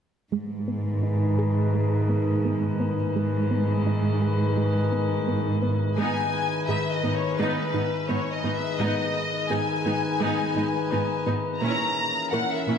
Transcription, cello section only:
0.32 G#2
3.15 G#2
5.98 G#2
6.69 G#2
7.04 G#2
7.39 G#2
7.74 G#2
8.10 G#2
8.45 G#2
8.80 G#2
9.50 G#2
9.86 G#2
10.21 G#2
10.57 G#2
10.92 G#2
11.27 G#2
11.62 A#2
12.33 A#2
12.68 A#2

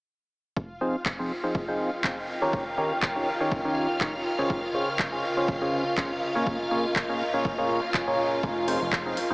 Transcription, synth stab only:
0.81 F3 C4 D#4 F4 G#4 C5
1.19 F3 C4 D#4 F4 G#4 C5
1.44 F3 C4 D#4 F4 G#4 C5
1.68 F3 C4 D#4 F4 G#4 C5
2.04 F3 C4 D#4 F4 G#4 C5
2.42 D#3 C#4 D#4 G4 A#4 C#5
2.78 D#3 C#4 D#4 G4 A#4 C#5
3.16 D#3 C#4 D#4 G4 A#4 C#5
3.40 D#3 C#4 D#4 G4 A#4 C#5
3.65 D#3 C#4 D#4 G4 A#4 C#5
4.01 D#3 C#4 D#4 G4 A#4 C#5
4.39 C#3 C#4 F4 G#4 C5 C#5
4.74 C#3 C#4 F4 G#4 C5 C#5
5.12 C#3 C#4 F4 G#4 C5 C#5
5.37 C#3 C#4 F4 G#4 C5 C#5
5.62 C#3 C#4 F4 G#4 C5 C#5
5.97 C#3 C#4 F4 G#4 C5 C#5
6.35 A#2 C#4 F4 G#4 A#4 C#5
6.71 A#2 C#4 F4 G#4 A#4 C#5
7.09 A#2 C#4 F4 G#4 A#4 C#5
7.34 A#2 C#4 F4 G#4 A#4 C#5
7.58 A#2 C#4 F4 G#4 A#4 C#5
8.08 A#2 C#4 F4 G#4 A#4 C#5
8.68 F3 C4 D#4 F4 G#4 C5
9.06 F3 C4 D#4 F4 G#4 C5
9.30 F3 C4 D#4 F4 G#4 C5

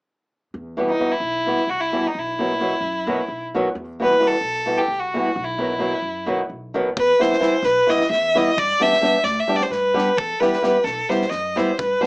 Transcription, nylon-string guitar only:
0.77 B2 E3 G3 B3
0.99 B2 E3 G3 B3
1.46 B2 E3 G3 B3
1.93 B2 E3 G3 B3
2.39 B2 D#3 F#3 B3
2.60 B2 D#3 F#3 B3
3.07 B2 D#3 F#3 B3
3.54 B2 D#3 F#3 B3
4.00 B2 E3 G3 B3
4.20 B2 E3 G3 B3
4.66 B2 E3 G3 B3
5.14 B2 E3 G3 B3
5.58 B2 D#3 F#3 B3
5.79 B2 D#3 F#3 B3
6.26 B2 D#3 F#3 B3
6.74 B2 D#3 F#3 B3
7.19 E3 G3 B3 E4
7.40 E3 G3 B3 E4
7.87 E3 G3 B3 E4
8.35 E3 G3 B3 E4
8.80 G3 B3 D4 G4
9.01 G3 B3 D4 G4
9.48 G3 B3 D4 G4
9.94 G3 B3 D4 G4
10.40 G3 B3 E4 G4
10.62 G3 B3 E4 G4
11.09 G3 B3 E4 G4
11.56 G3 B3 E4 G4
12.01 G3 B3 D4 G4

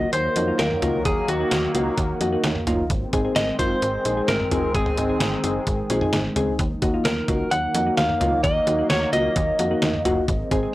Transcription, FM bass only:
0.13 D#2
0.36 F2
0.59 D#2
0.82 C#2
1.05 D#2
1.28 D#2
1.52 D#2
1.75 C#2
1.98 D#2
2.21 F2
2.44 D#2
2.67 F#1
2.90 G#1
3.13 G#1
3.36 G#1
3.59 F#1
3.82 G#1
4.05 A#1
4.29 G#1
4.52 F#1
4.75 G#1
4.98 G#1
5.21 G#1
5.44 F#1
5.67 G#1
5.90 A#1
6.13 G#1
6.36 C#2
6.59 D#2
6.82 D#2
7.05 D#2
7.28 C#2
7.51 D#2
7.74 F2
7.98 D#2
8.21 C#2
8.44 D#2
8.67 D#2
8.90 D#2
9.13 C#2
9.36 D#2
9.59 F2
9.82 D#2
10.05 F#1
10.28 G#1
10.51 G#1

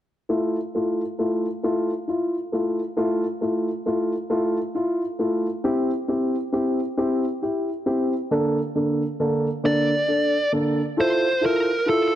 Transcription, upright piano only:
0.29 A3 E4 F4
0.75 A3 E4 F4
1.19 A3 E4 F4
1.63 A3 E4 F4
2.08 E4 F4
2.52 A3 E4 F4
2.97 A3 E4 F4
3.41 A3 E4 F4
3.86 A3 E4 F4
4.30 A3 E4 F4
4.75 E4 F4
5.19 A3 E4 F4
5.64 C4 E4 G4
6.08 C4 E4 G4
6.52 C4 E4 G4
6.97 C4 E4 G4
7.42 E4 G4
7.86 C4 E4 G4
8.31 D3 A#3 D4 A4
8.75 D3 A#3 D4 A4
9.20 D3 A#3 D4 A4
9.64 D3 A#3 D4 A4
10.08 D4 A4
10.52 D3 A#3 D4 A4
10.97 E4 F4 A4
11.41 E4 F4 A4
11.86 E4 F4 A4

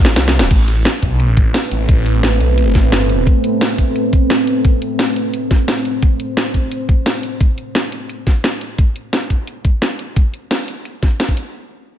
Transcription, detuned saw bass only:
Already playing: A1
0.16 C2
0.51 A1
1.03 B1
1.37 A1
1.72 A1
2.23 A1
2.40 B1
2.75 A1
2.92 G1

